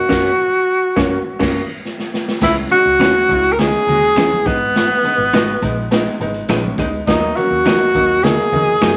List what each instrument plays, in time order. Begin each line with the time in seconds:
Already playing: tenor saxophone F#4
0.09 picked electric bass F#1, grand piano A#3 C#4 F#4, clean electric guitar C#4 F#4 A#4 C#5, kick, snare, crash
0.96 picked electric bass F#1, grand piano A#3 C#4 F#4, clean electric guitar C#4 F#4 A#4 C#5, kick, snare
1.39 picked electric bass F#1, grand piano A#3 C#4 F#4, clean electric guitar C#4 F#4 A#4 C#5, kick, snare, crash
1.85 snare
1.99 snare
2.14 snare
2.28 snare
2.41 picked electric bass C#2, grand piano G#3 C#4 E4, tenor saxophone E4, kick, snare, crash
2.70 grand piano G#3 C#4 D#4, tenor saxophone F#4, closed hi-hat, muted conga
2.85 picked electric bass C#2
2.99 picked electric bass D#2, grand piano G#3 C#4 F#4, clean electric guitar C#4 E4 G#4 C#5, finger snap, snare, closed hi-hat, high conga
3.29 picked electric bass C#2, grand piano G#3 C#4 E4, kick, closed hi-hat
3.44 closed hi-hat
3.52 tenor saxophone A#4
3.58 grand piano G#3 C#4 D#4, tenor saxophone G#4, snare, closed hi-hat, low conga
3.87 picked electric bass D#2, grand piano G#3 C#4 F#4, closed hi-hat, muted conga, low conga
4.02 closed hi-hat
4.15 picked electric bass E2, grand piano G#3 C#4 E4, clean electric guitar C#4 E4 G#4 C#5, finger snap, snare, closed hi-hat, high conga
4.31 high conga
4.45 picked electric bass G#1, grand piano G#3 B3 D#4, tenor saxophone B3, clean electric guitar D#4 G#4 B4 D#5, kick, closed hi-hat
4.75 snare, closed hi-hat
5.04 grand piano G#3 B3 D#4, closed hi-hat, muted conga
5.18 picked electric bass G#1
5.33 picked electric bass G#1, grand piano G#3 B3 F#4, clean electric guitar D#4 G#4 B4 D#5, finger snap, snare, closed hi-hat, high conga
5.62 picked electric bass A#1, grand piano G#3 B3 D#4, kick, closed hi-hat
5.91 grand piano G#3 B3 D#4, snare, closed hi-hat
6.20 picked electric bass G#1, grand piano G#3 B3 D#4, closed hi-hat, muted conga
6.34 closed hi-hat
6.48 picked electric bass A#1, grand piano G#3 B3 C#4, clean electric guitar D#4 G#4 B4 D#5, finger snap, snare, closed hi-hat, high conga
6.65 high conga
6.78 picked electric bass D2, grand piano G#3 B3 D#4, clean electric guitar D#4 G#4 B4 D#5, kick, closed hi-hat
7.07 picked electric bass D#2, grand piano F#3 A#3 D#4, tenor saxophone D#4, kick, snare, closed hi-hat, muted conga
7.36 grand piano F#3 A#3 C#4, tenor saxophone F#4, closed hi-hat, muted conga
7.51 picked electric bass D#2
7.65 picked electric bass E2, grand piano F#3 A#3 D#4, clean electric guitar D#4 F#4 A#4 D#5, finger snap, snare, closed hi-hat, high conga
7.94 picked electric bass D#2, grand piano F#3 A#3 D#4, kick, closed hi-hat
8.23 grand piano F#3 A#3 D#4, tenor saxophone G#4, snare, closed hi-hat, low conga
8.52 picked electric bass E2, grand piano F#3 A#3 D#4, closed hi-hat, muted conga, low conga
8.81 picked electric bass F#2, grand piano F#3 A#3 C#4, clean electric guitar D#4 F#4 A#4 D#5, finger snap, snare, closed hi-hat, high conga